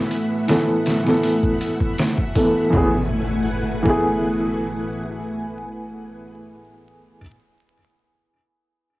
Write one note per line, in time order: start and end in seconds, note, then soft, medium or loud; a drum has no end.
0.00 0.43 E3 medium
0.00 2.69 A3 medium
0.00 0.44 B3 medium
0.00 0.45 B4 medium
0.00 2.69 E5 medium
0.00 2.70 F#5 medium
0.00 2.69 B5 medium
0.11 open hi-hat medium
0.48 1.00 E3 medium
0.48 1.01 B3 medium
0.48 1.02 A4 medium
0.48 snare loud
0.48 open hi-hat medium
0.86 snare medium
0.86 open hi-hat medium
1.04 2.31 E3 medium
1.04 2.32 B3 medium
1.04 snare soft
1.09 2.34 A4 medium
1.23 open hi-hat medium
1.43 kick medium
1.61 open hi-hat medium
1.80 kick medium
1.98 snare loud
1.98 open hi-hat medium
2.18 kick medium
2.35 2.69 E3 medium
2.35 2.71 A3 medium
2.35 2.73 B3 medium
2.35 3.11 A4 medium
2.35 kick medium
2.35 open hi-hat medium
2.70 2.93 E3 medium
2.70 2.94 A3 medium
2.70 6.23 A3 medium
2.70 6.23 E4 medium
2.70 6.23 B4 medium
2.70 6.23 F#5 medium
2.70 6.23 G#5 medium
2.70 kick loud
2.70 impact medium
2.75 2.96 B3 medium
2.75 2.97 G#4 medium
3.83 7.18 E3 medium
3.83 7.19 A3 medium
3.83 kick loud
3.87 7.20 B3 medium
3.87 7.21 G#4 medium